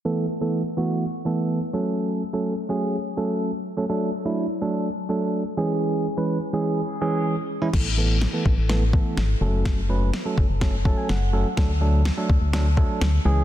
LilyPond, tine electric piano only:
<<
  \new Staff \with { instrumentName = "Tine electric piano" } { \time 4/4 \key a \major \tempo 4 = 125 r1 | r1 | r1 | r1 |
r1 | r2 r8 a''16 gis''16 fis''4 | r1 | }
  \new Staff \with { instrumentName = "Tine electric piano" } { \time 4/4 \key a \major <e a b a'>8 r16 <e a b a'>8 r16 <e a b fis'>8 r8 <e a b a'>8. r16 <fis a cis' a'>8~ | <fis a cis' a'>8 r16 <fis a cis' a'>8 r16 <fis a cis' gis'>8 r8 <fis a cis' a'>8. r8 <fis a cis' a'>16 | <fis a d' a'>8 r16 <fis a d' e'>8 r16 <fis a d' a'>8 r8 <fis a d' a'>8. r16 <e gis cis' gis'>8~ | <e gis cis' gis'>8 r16 <e gis cis' b'>8 r16 <e gis cis' gis'>8 r8 <e gis cis' gis'>8. r8 <e gis cis' e'>16 |
<e b>16 r16 <e a b a'>8 r16 <e a b a'>8 r16 <e a b a'>16 r16 <e a b a'>8 r8 <fis a cis' a'>8~ | <fis a cis' a'>16 r16 <fis a cis' b'>8 r16 <fis a cis' a'>8 r16 <fis a cis' a'>16 r16 <fis a cis' a'>8 r8 <fis a cis' a'>16 r16 | <fis a d' a'>16 r16 <fis a d' a'>8 r16 <fis a d' a'>8 r16 <fis a d' a'>16 r16 <fis a d' a'>8 r8 <e gis cis' gis'>8 | }
>>